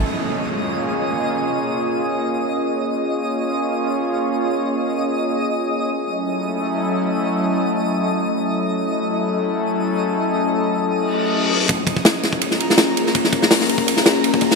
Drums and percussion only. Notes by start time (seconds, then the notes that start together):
11.69 kick, ride
11.87 kick, ride
11.97 kick
12.05 snare, ride
12.23 snare, ride
12.33 kick
12.41 ride
12.51 snare
12.60 ride
12.70 snare
12.78 snare, ride
12.97 ride
13.07 snare
13.15 kick, ride
13.24 snare
13.33 kick, ride
13.42 snare
13.51 snare, open hi-hat
13.60 snare
13.69 ride
13.78 kick
13.88 ride
13.97 snare
14.06 snare, ride
14.24 ride
14.34 kick
14.41 kick, ride
14.51 snare